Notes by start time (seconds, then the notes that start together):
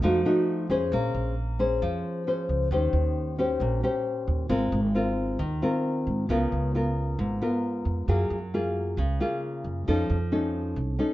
0.02 F2 F3 A3 D#4 F#4
0.25 A3 D#4 F#4
0.70 F2 C#4 G#4 C5
0.92 A#1 A#3
1.15 A#1
1.59 C#4 G#4 C5
1.82 F2 F3
2.27 C#4 G#4 C5
2.49 C#2
2.71 D#2 D#3 C#4 G4 C5
2.93 D#2
3.38 C#4 G4 C5
3.60 A#1 A#2
3.83 C#4 G4 C5
4.27 D#2
4.49 G#1 G#3 C4 F4 A#4
4.72 G#1
4.95 C4 F4 A#4
5.39 D#2 D#3
5.62 C4 F4 A#4
6.07 G#2
6.29 C#2 C#3 B3 F4 A#4
6.52 C#2
6.75 B3 F4 A#4
7.19 G#1 G#2
7.42 B3 F4 A#4
7.85 F2
8.08 F#2 F#3 A#3 F4 G#4
8.30 F#2
8.54 A#3 F4 G#4
8.97 C#2 C#3
9.20 A#3 F4 G#4
9.64 F#2
9.88 F2 F3 C#4 D#4 A4
10.10 F2
10.32 C#4 D#4 A4
10.76 C2
10.99 C#4 D#4 A4